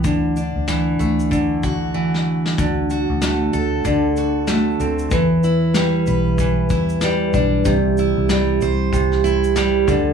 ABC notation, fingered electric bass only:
X:1
M:4/4
L:1/16
Q:"Swing 16ths" 1/4=95
K:Dmix
V:1 name="Fingered electric bass" clef=bass
D,,3 D,,3 D,,8- D,,2 | D,,3 D,,3 D,,2 D,,6 D,,2 | E,,6 B,,,4 E,,4 B,,,2 | C,,3 C,,3 C,,2 C,,6 D,,2 |]